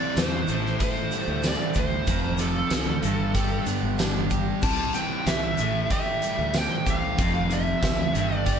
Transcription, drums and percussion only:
0.17 snare, closed hi-hat, tambourine, shaker
0.47 closed hi-hat, shaker
0.66 snare
0.80 kick, closed hi-hat, shaker
1.11 closed hi-hat, shaker
1.43 snare, closed hi-hat, tambourine, shaker
1.74 kick, closed hi-hat, shaker
2.07 kick, closed hi-hat, shaker
2.38 closed hi-hat, shaker
2.70 snare, closed hi-hat, tambourine, shaker
3.02 closed hi-hat, shaker
3.35 kick, closed hi-hat, shaker
3.66 closed hi-hat, shaker
3.98 snare, closed hi-hat, tambourine, shaker
4.30 kick, closed hi-hat, shaker
4.62 kick, crash, shaker
4.94 closed hi-hat, shaker
5.26 snare, closed hi-hat, tambourine, shaker
5.57 closed hi-hat, shaker
5.90 kick, closed hi-hat, shaker
6.22 closed hi-hat, shaker
6.54 snare, closed hi-hat, tambourine, shaker
6.86 kick, closed hi-hat, shaker
7.18 kick, closed hi-hat, shaker
7.51 closed hi-hat, shaker
7.67 shaker
7.83 kick, snare, closed hi-hat, tambourine, shaker
8.15 closed hi-hat, shaker
8.31 shaker
8.46 kick, closed hi-hat, shaker

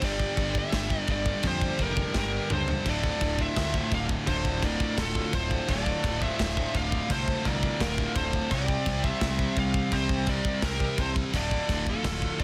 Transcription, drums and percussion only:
0.02 kick, crash
0.20 kick
0.37 kick, crash
0.55 kick
0.72 kick, snare, crash
0.90 kick
1.07 kick, crash
1.26 kick
1.43 kick, crash
1.61 kick
1.79 kick, crash
1.97 kick
2.14 kick, snare
2.50 mid tom
2.68 floor tom
2.86 kick, crash
3.04 kick
3.21 kick, crash
3.39 kick
3.56 kick, snare, crash
3.74 kick
3.92 kick, crash
4.09 kick
4.27 kick, crash
4.45 kick
4.63 kick, crash
4.80 kick
4.98 kick, snare, crash
5.15 kick
5.33 kick, crash
5.51 kick
5.69 kick, crash
5.86 kick
6.04 kick, crash
6.22 kick
6.39 kick, snare, crash
6.57 kick
6.75 kick, crash
6.92 kick
7.10 kick, crash
7.28 kick
7.45 kick, crash
7.63 kick
7.80 kick, snare, crash
7.98 kick
8.16 kick, crash
8.33 kick
8.51 kick, crash
8.68 kick
8.86 kick, crash
9.04 kick
9.21 kick, snare, crash
9.39 kick
9.57 kick, crash
9.74 kick
9.92 kick, crash
10.09 kick
10.26 kick, crash
10.45 kick
10.62 kick, snare, crash
10.80 kick
10.98 kick, crash
11.16 kick
11.34 kick, crash
11.51 kick
11.69 kick, crash
11.87 kick
12.04 kick, snare, crash
12.22 kick
12.40 kick, crash

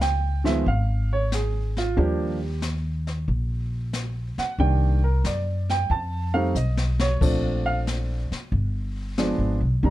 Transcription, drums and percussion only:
0.01 snare, hi-hat pedal
0.46 snare
0.66 brush sweep, kick
1.32 snare, hi-hat pedal
1.77 snare
1.97 brush sweep, kick
2.62 snare, hi-hat pedal
3.07 snare
3.28 brush sweep, kick
3.93 snare, hi-hat pedal
4.38 snare
4.59 brush sweep, kick
5.24 snare, hi-hat pedal
5.70 snare
5.90 brush sweep, kick
6.55 hi-hat pedal
6.77 snare
7.00 snare
7.21 brush sweep, kick, crash
7.87 snare, hi-hat pedal
8.32 snare
8.52 brush sweep, kick
9.18 snare, hi-hat pedal
9.83 brush sweep, kick

